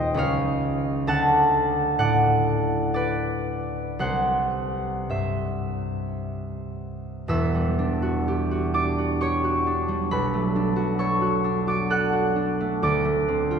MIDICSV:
0, 0, Header, 1, 2, 480
1, 0, Start_track
1, 0, Tempo, 914634
1, 559, Time_signature, 3, 2, 24, 8
1, 1045, Tempo, 958466
1, 1525, Tempo, 1069519
1, 2965, Tempo, 1121495
1, 3445, Tempo, 975610
1, 3925, Tempo, 937500
1, 4405, Tempo, 891530
1, 5365, Tempo, 914634
1, 6738, End_track
2, 0, Start_track
2, 0, Title_t, "Harp"
2, 0, Program_c, 0, 46
2, 0, Note_on_c, 0, 27, 70
2, 0, Note_on_c, 0, 39, 73
2, 0, Note_on_c, 0, 58, 52
2, 0, Note_on_c, 0, 65, 56
2, 0, Note_on_c, 0, 72, 67
2, 0, Note_on_c, 0, 75, 95
2, 0, Note_on_c, 0, 77, 99
2, 0, Note_on_c, 0, 79, 104
2, 0, Note_on_c, 0, 82, 102
2, 75, Note_on_c, 0, 37, 63
2, 80, Note_off_c, 0, 77, 0
2, 82, Note_on_c, 0, 61, 52
2, 89, Note_on_c, 0, 63, 53
2, 90, Note_on_c, 0, 73, 71
2, 97, Note_on_c, 0, 77, 92
2, 101, Note_off_c, 0, 27, 0
2, 102, Note_off_c, 0, 39, 0
2, 102, Note_off_c, 0, 58, 0
2, 102, Note_off_c, 0, 79, 0
2, 103, Note_off_c, 0, 82, 0
2, 105, Note_off_c, 0, 72, 0
2, 562, Note_on_c, 0, 38, 70
2, 566, Note_on_c, 0, 81, 112
2, 571, Note_on_c, 0, 78, 79
2, 577, Note_off_c, 0, 75, 0
2, 579, Note_off_c, 0, 37, 0
2, 579, Note_off_c, 0, 61, 0
2, 579, Note_off_c, 0, 63, 0
2, 579, Note_off_c, 0, 65, 0
2, 580, Note_off_c, 0, 77, 0
2, 582, Note_off_c, 0, 73, 0
2, 1037, Note_off_c, 0, 78, 0
2, 1042, Note_on_c, 0, 45, 53
2, 1044, Note_on_c, 0, 78, 98
2, 1049, Note_on_c, 0, 74, 67
2, 1515, Note_off_c, 0, 74, 0
2, 1521, Note_on_c, 0, 74, 82
2, 1529, Note_on_c, 0, 71, 61
2, 1990, Note_off_c, 0, 78, 0
2, 1992, Note_on_c, 0, 36, 59
2, 1997, Note_on_c, 0, 78, 86
2, 2001, Note_on_c, 0, 72, 75
2, 2014, Note_off_c, 0, 74, 0
2, 2015, Note_off_c, 0, 45, 0
2, 2018, Note_off_c, 0, 38, 0
2, 2018, Note_off_c, 0, 81, 0
2, 2487, Note_on_c, 0, 43, 45
2, 2490, Note_off_c, 0, 72, 0
2, 2492, Note_on_c, 0, 76, 63
2, 2495, Note_on_c, 0, 72, 44
2, 2822, Note_off_c, 0, 78, 0
2, 3265, Note_off_c, 0, 71, 0
2, 3445, Note_on_c, 0, 28, 64
2, 3449, Note_off_c, 0, 76, 0
2, 3450, Note_on_c, 0, 40, 67
2, 3451, Note_on_c, 0, 88, 98
2, 3455, Note_on_c, 0, 76, 77
2, 3465, Note_off_c, 0, 36, 0
2, 3465, Note_off_c, 0, 43, 0
2, 3469, Note_off_c, 0, 72, 0
2, 3576, Note_on_c, 0, 55, 56
2, 3694, Note_on_c, 0, 62, 57
2, 3810, Note_on_c, 0, 66, 59
2, 3937, Note_on_c, 0, 67, 56
2, 4051, Note_off_c, 0, 66, 0
2, 4057, Note_on_c, 0, 66, 54
2, 4168, Note_off_c, 0, 62, 0
2, 4173, Note_on_c, 0, 62, 53
2, 4174, Note_on_c, 0, 86, 92
2, 4180, Note_on_c, 0, 74, 63
2, 4291, Note_off_c, 0, 66, 0
2, 4298, Note_on_c, 0, 66, 52
2, 4407, Note_off_c, 0, 67, 0
2, 4412, Note_on_c, 0, 67, 60
2, 4415, Note_on_c, 0, 85, 87
2, 4421, Note_on_c, 0, 73, 70
2, 4532, Note_off_c, 0, 66, 0
2, 4538, Note_on_c, 0, 66, 57
2, 4654, Note_off_c, 0, 62, 0
2, 4661, Note_on_c, 0, 62, 52
2, 4770, Note_off_c, 0, 55, 0
2, 4776, Note_on_c, 0, 55, 57
2, 4899, Note_on_c, 0, 35, 65
2, 4900, Note_on_c, 0, 83, 97
2, 4907, Note_on_c, 0, 71, 64
2, 4912, Note_off_c, 0, 28, 0
2, 4913, Note_off_c, 0, 55, 0
2, 4915, Note_off_c, 0, 88, 0
2, 4916, Note_off_c, 0, 40, 0
2, 4917, Note_off_c, 0, 67, 0
2, 4918, Note_off_c, 0, 76, 0
2, 5020, Note_on_c, 0, 57, 57
2, 5131, Note_off_c, 0, 62, 0
2, 5138, Note_on_c, 0, 62, 56
2, 5226, Note_off_c, 0, 85, 0
2, 5243, Note_off_c, 0, 66, 0
2, 5249, Note_on_c, 0, 66, 56
2, 5370, Note_off_c, 0, 73, 0
2, 5371, Note_on_c, 0, 69, 57
2, 5372, Note_on_c, 0, 85, 93
2, 5377, Note_on_c, 0, 73, 71
2, 5484, Note_off_c, 0, 66, 0
2, 5491, Note_on_c, 0, 66, 55
2, 5603, Note_off_c, 0, 62, 0
2, 5609, Note_on_c, 0, 62, 54
2, 5723, Note_off_c, 0, 66, 0
2, 5727, Note_off_c, 0, 86, 0
2, 5730, Note_on_c, 0, 66, 48
2, 5733, Note_on_c, 0, 86, 77
2, 5734, Note_off_c, 0, 74, 0
2, 5740, Note_on_c, 0, 74, 62
2, 5845, Note_off_c, 0, 69, 0
2, 5850, Note_on_c, 0, 69, 58
2, 5853, Note_on_c, 0, 90, 100
2, 5858, Note_on_c, 0, 78, 72
2, 5963, Note_off_c, 0, 66, 0
2, 5969, Note_on_c, 0, 66, 55
2, 6084, Note_off_c, 0, 62, 0
2, 6091, Note_on_c, 0, 62, 50
2, 6214, Note_off_c, 0, 57, 0
2, 6220, Note_on_c, 0, 57, 54
2, 6330, Note_off_c, 0, 86, 0
2, 6335, Note_on_c, 0, 38, 67
2, 6336, Note_off_c, 0, 74, 0
2, 6338, Note_on_c, 0, 86, 89
2, 6342, Note_on_c, 0, 74, 79
2, 6349, Note_off_c, 0, 66, 0
2, 6349, Note_off_c, 0, 83, 0
2, 6350, Note_off_c, 0, 35, 0
2, 6351, Note_off_c, 0, 85, 0
2, 6351, Note_off_c, 0, 90, 0
2, 6353, Note_off_c, 0, 71, 0
2, 6353, Note_off_c, 0, 73, 0
2, 6355, Note_off_c, 0, 78, 0
2, 6446, Note_off_c, 0, 57, 0
2, 6452, Note_on_c, 0, 57, 59
2, 6576, Note_on_c, 0, 60, 59
2, 6694, Note_on_c, 0, 65, 56
2, 6738, Note_off_c, 0, 38, 0
2, 6738, Note_off_c, 0, 57, 0
2, 6738, Note_off_c, 0, 60, 0
2, 6738, Note_off_c, 0, 62, 0
2, 6738, Note_off_c, 0, 65, 0
2, 6738, Note_off_c, 0, 69, 0
2, 6738, Note_off_c, 0, 74, 0
2, 6738, Note_off_c, 0, 86, 0
2, 6738, End_track
0, 0, End_of_file